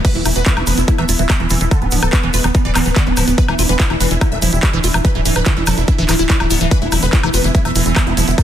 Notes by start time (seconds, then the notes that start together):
0.05 E3 B3 B4, kick, closed hi-hat, crash, shaker
0.15 E1 E3 E4, closed hi-hat
0.25 E1 E3 E4, open hi-hat, high woodblock, shaker
0.36 E1 E3 B3 B4, closed hi-hat, shaker
0.46 D3 B3 E4, kick, clap, closed hi-hat, shaker
0.57 F1 E4 F4, closed hi-hat, high woodblock
0.67 F1 F3 B4, open hi-hat, shaker
0.78 F1 E4, closed hi-hat, shaker
0.88 A3 E4, kick, closed hi-hat, shaker
0.98 E1 E3 A3 E5, closed hi-hat, high woodblock
1.09 E1 E4 F4, open hi-hat, shaker
1.19 E1 E3 E4, closed hi-hat, shaker
1.30 E3 E5, kick, clap, closed hi-hat, high woodblock, shaker
1.40 E1 E3 E4, closed hi-hat
1.50 E1 E3 E4, open hi-hat, shaker
1.61 E1 E3 E4, closed hi-hat, shaker
1.71 D3 A4, kick, closed hi-hat, high woodblock, shaker
1.82 D1 B3 F4, closed hi-hat
1.91 D1 F3 B3 D4, open hi-hat, shaker
2.03 D1 B3 A4, closed hi-hat, high woodblock, shaker
2.13 B3, kick, clap, closed hi-hat, shaker
2.23 E1 E3 B3, closed hi-hat
2.34 E1 F4 B4, open hi-hat, shaker
2.44 E1 E3 B3, closed hi-hat, high woodblock, shaker
2.55 E3 B3, kick, closed hi-hat, shaker
2.65 D1 E3 D5, closed hi-hat
2.75 D1 E3 B3, clap, open hi-hat, high woodblock, shaker
2.86 D1 E3 B3, closed hi-hat, shaker
2.96 D3 D5, kick, clap, closed hi-hat, shaker
3.07 D1 B3 F4, closed hi-hat
3.17 D1 F3 B3, open hi-hat, high woodblock, shaker
3.27 D1 B3, closed hi-hat, shaker
3.38 D4 B4, kick, closed hi-hat, shaker
3.48 E1 E3 E4, closed hi-hat, high woodblock
3.59 E1 E4 F4, open hi-hat, shaker
3.69 E1 E3 B3 B4, closed hi-hat, shaker
3.80 E3 E4, kick, clap, closed hi-hat, shaker
3.90 F1 E3 E4, closed hi-hat, high woodblock
4.00 F1 E3 B4, open hi-hat, shaker
4.11 F1 E3 E4, closed hi-hat, shaker
4.21 D3 A3 E4, kick, closed hi-hat, high woodblock, shaker
4.32 E1 A3 F4 E5, closed hi-hat
4.42 E1 F3 E4, open hi-hat, shaker
4.53 E1 G3 E4, closed hi-hat, shaker
4.62 G3 E5, kick, clap, closed hi-hat, high woodblock, shaker
4.73 E1 E3 E4, closed hi-hat
4.84 E1 E4 F4, open hi-hat, shaker
4.94 E1 E3 E4, closed hi-hat, high woodblock, shaker
5.04 E3 B4, kick, closed hi-hat, shaker
5.15 D1 E3 E4, closed hi-hat
5.25 D1 E3 E4, open hi-hat, shaker
5.35 D1 E3 B4, closed hi-hat, high woodblock, shaker
5.45 D3 E3 E4, kick, clap, closed hi-hat, shaker
5.57 E1 E4 F4, closed hi-hat
5.67 E1 F3 A4, open hi-hat, high woodblock, shaker
5.78 E1 E4, closed hi-hat, shaker
5.88 E4, kick, closed hi-hat, shaker
5.98 D1 E3 E4, closed hi-hat
6.09 D1 E3 E4, clap, open hi-hat, high woodblock, shaker
6.19 D1 E4, closed hi-hat, shaker
6.30 D3, kick, clap, closed hi-hat, shaker
6.40 D1 E4, closed hi-hat, high woodblock
6.51 D1 B3 E4, open hi-hat, shaker
6.61 D1 E3 E4, closed hi-hat, shaker
6.71 B3 B4, kick, closed hi-hat, shaker
6.82 E1 E4 F4, closed hi-hat
6.92 E1 F3 E4, open hi-hat, high woodblock, shaker
7.03 E1 D3 B3 B4, closed hi-hat, shaker
7.13 B3 E4, kick, clap, closed hi-hat, shaker
7.23 F1 E3 E4, closed hi-hat, high woodblock
7.34 F1 F4 B4, open hi-hat, shaker
7.44 F1 E3 E4, closed hi-hat, shaker
7.54 E3 A3 E4, kick, closed hi-hat, shaker
7.65 E1 E3 A3 E5, closed hi-hat, high woodblock
7.75 E1 E3 E4, open hi-hat, shaker
7.86 E1 E3 E4, closed hi-hat, shaker
7.96 E5, kick, clap, closed hi-hat, high woodblock, shaker
8.07 E1 E4 F4, closed hi-hat
8.17 E1 F3 E4, open hi-hat, shaker
8.28 E1 D3 E4, closed hi-hat, shaker
8.38 A4, kick, closed hi-hat, high woodblock, shaker